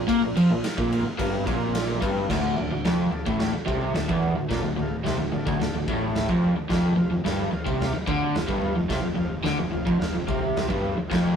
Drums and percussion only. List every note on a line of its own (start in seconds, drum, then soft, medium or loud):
0.09 kick loud
0.09 ride loud
0.37 ride medium
0.64 snare loud
0.64 ride loud
0.78 kick loud
0.92 ride medium
1.19 kick loud
1.19 ride medium
1.47 kick loud
1.47 ride medium
1.75 snare loud
1.75 ride loud
2.02 kick loud
2.02 ride medium
2.30 kick loud
2.30 snare loud
2.30 floor tom medium
2.30 crash loud
2.58 floor tom medium
2.85 snare loud
2.85 floor tom medium
3.12 floor tom medium
3.26 kick loud
3.40 snare loud
3.40 floor tom medium
3.68 kick loud
3.68 floor tom medium
3.95 snare loud
3.95 floor tom medium
4.09 kick loud
4.23 floor tom medium
4.51 kick loud
4.51 snare loud
4.51 floor tom medium
4.79 floor tom medium
5.06 snare loud
5.06 floor tom medium
5.33 floor tom medium
5.47 kick loud
5.61 snare loud
5.61 floor tom medium
5.88 kick loud
5.88 floor tom medium
6.16 snare loud
6.16 floor tom medium
6.29 kick loud
6.43 floor tom medium
6.70 kick loud
6.70 snare loud
6.70 floor tom medium
6.98 floor tom medium
7.26 snare loud
7.26 floor tom medium
7.54 floor tom medium
7.67 kick loud
7.81 snare loud
7.81 floor tom medium
8.08 kick loud
8.08 floor tom medium
8.35 snare loud
8.35 floor tom medium
8.49 kick loud
8.62 floor tom medium
8.90 kick loud
8.90 snare loud
8.90 floor tom medium
9.18 floor tom medium
9.46 snare loud
9.46 floor tom medium
9.73 floor tom medium
9.87 kick loud
10.01 snare loud
10.01 floor tom medium
10.29 kick loud
10.29 floor tom medium
10.57 snare loud
10.57 floor tom medium
10.70 kick loud
10.85 floor tom medium
11.11 kick loud
11.11 snare loud
11.11 floor tom medium